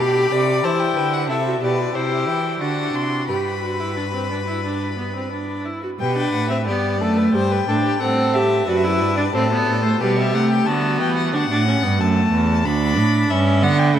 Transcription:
Already playing: viola G4
0.00 cello B2, violin G4 B5
0.32 cello C3, violin D5
0.64 cello E3, viola E4, violin C5 A5
0.80 violin G5
0.96 cello D3, violin B4
1.13 violin F#5
1.29 cello C3, viola E4, violin A4 E5
1.45 viola F#4
1.61 cello B2, viola G4, violin B4 D5
1.78 viola F#4
1.94 cello C3, viola E4, violin G4 C5
2.27 cello E3, violin G5
2.60 cello D3, viola D4, violin F#4 F#5
2.93 cello C3, violin C6
3.28 cello G2, viola G4, violin B4 B5
3.62 viola F#4
3.80 viola E4
3.96 viola D4
4.14 viola C4
4.30 viola D4
4.47 viola E4
4.64 viola D4
4.97 viola B3
5.15 viola C4
5.32 viola D4
5.65 viola E4
5.83 viola F#4
5.99 cello B2, viola G4, violin B4 G5
6.16 viola D4, violin G5
6.33 cello A2, violin F#5
6.49 viola C4, violin E5
6.66 cello G2, viola B3, violin G4 D5
7.00 cello F#2, viola A3, violin A4
7.17 violin B4
7.33 cello G2, viola G3, violin C5 G5
7.52 violin B4
7.67 cello A2, viola D4, violin A4
7.85 violin G4
8.00 cello A2, viola C4, violin A4 F#5
8.34 viola G4, violin E5
8.67 cello F#2, viola F#4, violin B4 D5
8.76 violin E5
8.84 viola E4, violin D5
8.92 violin E5
9.00 cello G2, violin D5
9.09 violin E5
9.16 viola D4, violin D5
9.34 cello A2, viola C4, violin A4 C5
9.43 violin D5
9.51 viola B3, violin C5
9.59 violin D5
9.67 cello A2, violin C5
9.75 violin D5
9.82 viola A3, violin C5
10.00 cello B2, viola G3, violin G4 B4
10.18 violin E5
10.33 cello C3, viola A3, violin F#5
10.50 violin G5
10.66 cello D3, viola B3, violin F#4 A5
11.00 cello E3, violin G5
11.17 violin F#5
11.33 cello D3, viola D4, violin F#5
11.49 cello A2, viola D4
11.66 viola C#4
11.83 cello G2, viola B3
11.99 cello F#2, viola A3, violin A5
12.32 cello E2
12.65 cello D2, viola D4, violin B5
12.98 cello A2
13.30 cello G2, viola C#4, violin E5
13.63 cello D3, viola B3, violin F#5
13.79 violin G5
13.95 cello C#3, viola A3, violin E5

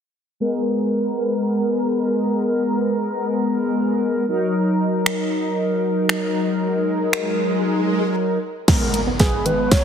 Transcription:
0.40 analog polysynth G#3 B3 A#4
4.28 analog polysynth F#3 D#4 A#4
4.54 swell
5.06 finger snap
6.09 finger snap
7.13 finger snap
8.68 synth arpeggio sound G#2, analog polysynth G#3 B3 A#4, kick, snare, closed hi-hat, crash, impact, riser
8.81 synth arpeggio sound D#3
8.94 synth arpeggio sound A#3, closed hi-hat
9.07 synth arpeggio sound B3
9.20 analog polysynth G#3 B3 B4, alto saxophone G#4, synth arpeggio sound G#4, kick, snare, closed hi-hat
9.33 synth arpeggio sound G#2
9.46 synth arpeggio sound D#3, alto saxophone B4, closed hi-hat
9.72 synth arpeggio sound B3, alto saxophone C#5, kick, snare, closed hi-hat

